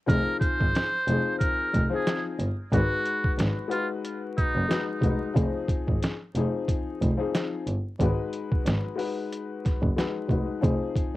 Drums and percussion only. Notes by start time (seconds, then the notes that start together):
0.09 kick, closed hi-hat
0.41 kick, closed hi-hat
0.60 kick
0.75 snare, closed hi-hat
1.08 closed hi-hat
1.41 kick, closed hi-hat
1.74 kick, closed hi-hat
2.07 snare, closed hi-hat
2.39 closed hi-hat
2.72 kick, closed hi-hat
3.06 closed hi-hat
3.24 kick
3.39 snare, closed hi-hat
3.71 closed hi-hat
4.05 closed hi-hat
4.38 kick, closed hi-hat
4.71 snare, closed hi-hat
5.02 kick, closed hi-hat
5.36 kick, closed hi-hat
5.68 kick, closed hi-hat
5.88 kick
6.03 snare, closed hi-hat
6.35 closed hi-hat
6.68 kick, closed hi-hat
7.02 kick, closed hi-hat
7.35 snare, closed hi-hat
7.67 closed hi-hat
8.00 kick, closed hi-hat
8.33 closed hi-hat
8.52 kick
8.66 snare, closed hi-hat
8.99 open hi-hat
9.32 closed hi-hat
9.65 kick, snare, closed hi-hat
9.83 kick
9.98 snare, closed hi-hat
10.29 kick, closed hi-hat
10.64 kick, closed hi-hat
10.96 kick, closed hi-hat